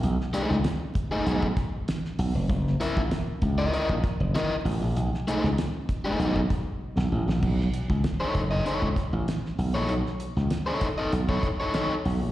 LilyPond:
<<
  \new Staff \with { instrumentName = "Overdriven electric guitar" } { \time 4/4 \key b \major \tempo 4 = 97 r8 <a dis' gis'>16 r4 <a dis' gis'>16 <a dis' gis'>16 r4. r16 | r8 <e' ais' e''>16 r4 <e' ais' dis''>16 <e' ais' dis''>16 r8. <e' ais' dis''>16 r8. | r8 <a dis' gis'>16 r4 <a dis' gis'>16 <a dis' gis'>16 r4. r16 | r4 r16 <dis' a' cis''>16 r16 <dis' a' dis''>16 <dis' a' cis''>16 r4. <dis' a' cis''>16 |
r4 r16 <dis' a' cis''>16 r16 <dis' a' dis''>16 r16 <dis' a' cis''>16 r16 <dis' a' cis''>16 <dis' a' cis''>16 r8. | }
  \new Staff \with { instrumentName = "Slap bass" } { \clef bass \time 4/4 \key b \major b,,16 r8 cis,16 r4 b,,8 r4 b,,16 eis,,16 | fis,,8 r16 ais,,16 r8 cis,8 r16 ais,,16 r16 fis,,16 r8 a,,16 ais,,16 | b,,16 r8 cis,16 r4 b,,8 r8. b,,16 a,,16 ais,,16 | b,,8 r16 cis,16 r8 fis,,8 r16 cis,16 r16 a,,16 r8 b,,16 ais,,16 |
b,,16 r8 cis,16 r4 b,,8 r4 b,,16 ais,,16 | }
  \new DrumStaff \with { instrumentName = "Drums" } \drummode { \time 4/4 hh16 sn16 hh16 sn16 <hh sn>8 <hh bd>8 hh16 bd16 <hh bd sn>8 <hh sn>16 sn16 hho8 | <hh bd>16 sn16 hh16 <bd sn>16 <hh sn>8 <hh bd>8 hh16 bd16 <hh bd sn>8 <hh sn>8 hho8 | hh16 sn16 hh16 sn16 <hh sn>8 <hh bd>8 hh16 bd16 <hh bd sn>8 r16 sn8 sn16 | <cymc bd>16 sn16 hh16 <bd sn>16 <hh sn>8 <hh bd>8 hh16 bd16 <hh bd sn>8 <hh sn>16 sn16 hho8 |
hh16 sn16 hh16 sn16 <hh sn>8 <hh bd>8 hh16 bd16 <hh bd sn>8 <hh sn>8 hho8 | }
>>